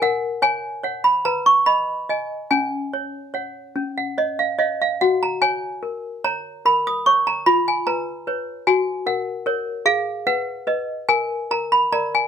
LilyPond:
\new Staff \with { instrumentName = "Toy piano" } { \time 6/8 \key fis \major \tempo 4. = 49 << { fis''8 gis''8. b''16 ais''16 cis'''16 b''4 | gis''4. r16 fis''16 dis''16 eis''16 dis''16 eis''16 | fis''16 ais''16 gis''4 ais''8 b''16 dis'''16 cis'''16 ais''16 | b''16 gis''16 ais''4 gis''8 fis''4 |
\key aes \dorian f''8 ges''4 aes''8 bes''16 ces'''16 bes''16 aes''16 | } \\ { ais'8 cis''8 <cis'' fis''>8 b'8 dis''8 <dis'' gis''>8 | cis'8 cis''8 <cis'' fis''>8 cis'8 cis''8 <cis'' eis''>8 | fis'8 cis''8 ais'8 cis''8 ais'8 cis''8 | eis'8 b'8 <b' cis''>8 fis'8 ais'8 <ais' cis''>8 |
aes'8 ces''8 <ces'' ees''>8 bes'8 bes'8 <bes' d''>8 | } >> }